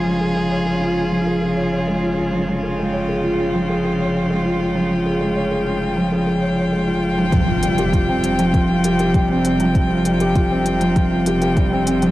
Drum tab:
HH |----------------|----------------|----------------|x-xxx-xxx-xxx-xx|
BD |----------------|----------------|----------------|o---o---o---o---|

HH |x-xxx-xxx-xxx-xx|
BD |o---o---o---o---|